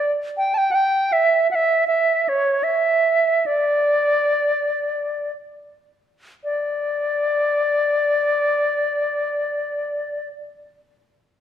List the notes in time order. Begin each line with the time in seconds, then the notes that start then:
Already playing: D5
0.37 G5
0.54 G5 A5
0.71 F#5 G5
1.12 E5
1.51 F#5
1.55 E5
1.87 E5
2.24 E5
2.29 C#5
2.64 E5
3.46 D5
6.44 D5